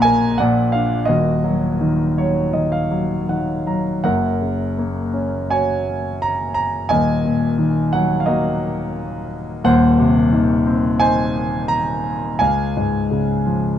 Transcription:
grand piano
Already playing: A#1 A#2 F#5 A#5
0.02 A#4 G#5
0.38 A#1 A#2 D5 F#5
0.72 D4 F5
1.05 D#1 D#2 F#4 D#5
1.44 F#3
1.81 D#3
2.18 F#3 C#5
2.53 D#3 D#5
2.72 F5
2.91 F#3
3.29 D#3 F#5
3.67 F#3 A#5
4.04 F#1 F#2 A#4 F#5
4.42 C#3
4.78 A#3
5.14 C#4
5.50 F#4 C#5 G#5
6.22 A#5
6.54 A#5
6.89 D#1 D#2 D#5 G#5
7.25 A#2
7.59 D#3
7.93 F#3 F#5
8.20 F5
8.26 A#3 F#4 D#5
9.64 D#1 D#2 C5 F#5
9.99 C3
10.33 D#3
10.67 C4
11.00 D#4 C5 G#5
11.68 A#5
12.39 C#2 F5 G#5
12.77 G#2
13.11 C#3
13.46 F3

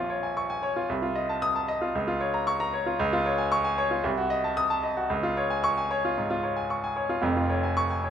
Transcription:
grand piano
Already playing: A#1 A#2 F3 F4 C#5 G#5 C#6
0.10 C#5
0.23 G#5
0.37 C#6
0.50 G#5
0.63 C#5
0.76 F4
0.89 C2
1.02 F4
1.16 D#5
1.29 A5
1.42 D#6
1.56 A5
1.68 D#5
1.81 F4
1.95 C#2
2.08 F4
2.21 C#5
2.34 A#5
2.47 C#6
2.60 A#5
2.74 C#5
2.86 F4
2.99 C#2
3.13 F4
3.26 C#5
3.38 G#5
3.52 C#6
3.64 G#5
3.78 C#5
3.91 F4
4.04 C2
4.18 F#4
4.30 D#5
4.44 A5
4.57 D#6
4.70 A5
4.83 D#5
4.97 F#4
5.10 C#2
5.23 F4
5.37 C#5
5.50 G#5
5.64 C#6
5.78 G#5
5.91 C#5
6.05 F4
6.18 G#2
6.30 F4
6.43 C#5
6.56 G#5
6.70 C#6
6.84 G#5
6.96 C#5
7.09 F4
7.22 F1 F2
7.37 F4
7.49 C#5
7.63 G#5
7.77 C#6
7.90 G#5
8.04 C#5

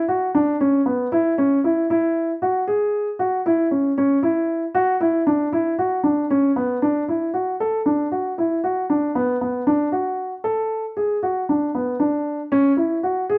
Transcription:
grand piano
0.08 F#4
0.35 D4
0.60 C#4
0.86 B3
1.12 E4
1.38 C#4
1.64 E4
1.90 E4
2.42 F#4
2.68 G#4
3.19 F#4
3.46 E4
3.71 C#4
3.98 C#4
4.23 E4
4.75 F#4
5.01 E4
5.27 D4
5.53 E4
5.79 F#4
6.04 D4
6.30 C#4
6.56 B3
6.82 D4
7.08 E4
7.34 F#4
7.60 A4
7.86 D4
8.12 F#4
8.38 E4
8.64 F#4
8.90 D4
9.15 B3
9.41 B3
9.67 D4
9.92 F#4
10.44 A4
10.97 G#4
11.23 F#4
11.49 D4
11.75 B3
12.00 D4
12.52 C#4
12.77 E4
13.03 F#4
13.30 G#4

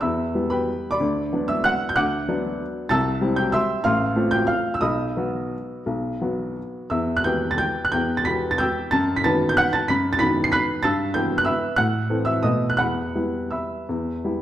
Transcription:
upright piano
0.01 E2 E5 B5 E6
0.35 E3 G3 B3
0.50 B4 G5 B5
0.91 D5 B5 D6
1.00 D2
1.33 F#3 B3 D4
1.48 E5 E6
1.64 F#5 F#6
1.89 G6
1.96 D2 F#5 D6 F#6
2.28 F#3 B3 D4
2.89 C2 A5 E6 A6
3.21 G3 C4 E4
3.36 G5 G6
3.52 E5 C6 E6
3.84 A1 F5 C6 F6
4.16 A3 C4 F4
4.31 G5 G6
4.47 F5 F6
4.74 E6
4.81 B1 D#5 B5 D#6
5.17 F#3 B3 F#4
5.86 B1
6.21 F#3 B3 F#4
6.90 E2 E5 E6
7.17 F#6
7.24 E3 B3 G4 G5 G6
7.51 A6
7.58 G5 G6
7.85 F#6
7.92 E2 G5 G6
8.17 A6
8.25 E3 B3 G4 B5 B6
8.51 A6
8.58 G5 E6 G6
8.91 F#2 A5 A6
9.16 B6
9.24 D#3 B3 B4 A5 A6
9.49 G6
9.57 F#5 F#6
9.73 A5 A6
9.88 F#2 B5 B6
10.13 A6
10.19 D#3 B3 B4 B5 B6
10.44 C7
10.52 B5 F#6 B6
10.83 G2 A5 E6 A6
11.14 E3 B3 B4 G5 G6
11.38 F#6
11.45 E5 B5 E6
11.76 A2 F#5 F#6
12.10 E3 C4 A4
12.25 E5 E6
12.43 B2 A3 B3 F#4 D#5 D#6
12.70 F#6
12.77 E2 F#5 B5 F#6
13.15 G3 B3 E4
13.51 E5 B5 E6
13.89 E2
14.24 G3 B3 E4

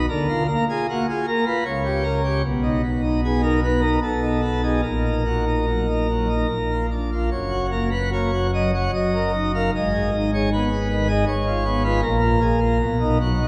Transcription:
pipe organ
0.09 D2 D3 A#4
0.28 F4
0.47 A#3 A#4
0.69 F4 G#4
0.89 A#3 F#4
1.08 F4 G#4
1.27 A#3 A#4
1.46 F4 B4
1.65 C#2 C#3 C#5
1.85 G4
2.04 A#4
2.24 G4
2.43 B1 B2
2.63 D#4
2.83 B3
3.02 D#4
3.24 B3 G#4
3.43 D#4 A#4
3.64 B3 B4
3.81 D#4 A#4
4.02 B1 B2 A4
4.22 D#4
4.41 B3
4.62 D#4 G#4
4.82 A#1 A#2 A#4
5.04 D#4
5.25 F#4
5.47 D#4
5.68 F#3
5.88 D#4
6.10 F#3
6.29 D#4
6.48 A#1 A#2
6.71 F4
6.91 D4
7.12 F4
7.31 F#1 F#2 C#5
7.51 F#4
7.71 A#3 A#4
7.91 F#4 B4
8.12 A#3 C#5
8.33 F#4
8.54 F#3 D#5
8.74 F#4 C#5
8.93 F#1 F#2 D#5
9.14 A#4
9.34 D#4
9.54 A#4 F5
9.74 G#1 G#2 D#5
9.94 G#4
10.14 D#4
10.34 G#4 C#5
10.53 B3 B4
10.71 G#4
10.91 D#3
11.08 G#4 D#5
11.27 G#1 G#2 C#5
11.47 F4
11.65 B3
11.83 F4 B4
12.02 A#1 A#2 A#4
12.21 F4
12.41 G#4
12.60 F4
12.80 B1 B2
13.00 D#4
13.21 F#3 F#4
13.42 D#4

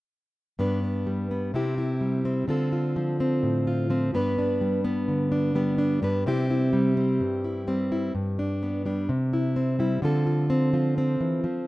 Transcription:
steel-string acoustic guitar
0.59 G2 B3 D4 B4
0.84 D4
1.07 G3
1.31 B3
1.54 C3 C4 E4 G4
1.78 E4
2.01 G3
2.25 C4
2.48 D3 C4 F4 A4
2.72 F4
2.96 F3
3.20 C4
3.43 A2
3.67 F4
3.90 F3 C4
4.14 G2 B3 D4 B4
4.38 D4
4.61 G3
4.85 B3
5.08 D3
5.32 D4
5.55 G3 B3
5.78 D4
6.02 G2 B3 D4 B4
6.26 C3 C4 E4 G4
6.50 E4
6.73 G3
6.97 C4
7.20 G2
7.44 E4
7.67 G3 C4
7.92 E4
8.15 G2
8.39 D4
8.63 B3
8.85 G3 D4
9.09 C3
9.33 E4
9.56 C4
9.79 G3 E4
10.02 D3 F3 C4 F4 A4
10.26 F4
10.50 C4
10.73 F3 F4
10.98 C4
11.21 E3
11.44 F3

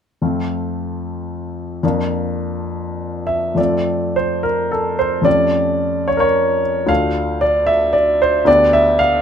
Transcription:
grand piano
0.22 F2 A3 C4 F4
1.83 F2 A#3 D4 F4
3.27 E5
3.55 F2 A3 C4 F4 D5
4.16 C5
4.43 A#4
4.71 A4
4.99 C5
5.22 F2 A3 C#4 G4 D5
6.08 C#5
6.17 A#4 C#5
6.86 D2 A3 D4 F4 F5
7.41 D5
7.67 E5
7.93 D5
8.22 C5
8.45 D2 B3 D4 G4 D5
8.73 E5
8.99 F5

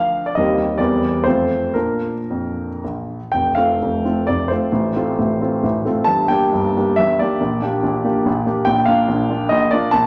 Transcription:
grand piano
Already playing: F3 D4 A#4 F5
0.26 D5
0.35 D#2 G3 C4 A#4 D#5
0.78 E2 G3 C4 A#4 D5
1.24 F2 A3 C4 F4 C5
1.74 A#2 D4 F4 A#4
2.30 F2
2.84 A#1
3.32 F1 F2 G5
3.55 A3 C4 F4 F5
3.82 F1 F2
4.05 A3 C4 F4
4.27 F1 F2 D5
4.48 A3 C4 F4 C5
4.72 A1 A2
4.96 A3 C4 F4
5.19 A1 A2
5.41 A3 C4 F4
5.63 A1 A2
5.85 A3 C4 F4
6.04 G1 G2 A5
6.28 A#3 D4 G4 G5
6.53 G1 G2
6.77 A#3 D4 G4
6.96 G1 G2 E5
7.19 A#3 D4 G4 D5
7.41 A#1 A#2
7.62 A#3 D4 G4
7.83 A#1 A#2
8.04 A#3 D4 G4
8.26 A#1 A#2
8.46 A#3 D4 G4
8.65 A#1 A#2 G5
8.86 A#3 D4 F4 F5
9.08 A#1 A#2
9.30 A#3 D4 F4
9.49 A#1 A#2 D#5
9.71 A#3 D4 F4 D5
9.91 A#1 A#2 A5

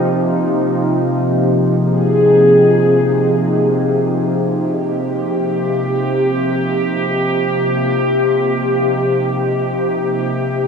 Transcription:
ambient pad
Already playing: C3 F3 A#3 D#4 G4
1.61 G#4
4.28 G4
6.84 C3

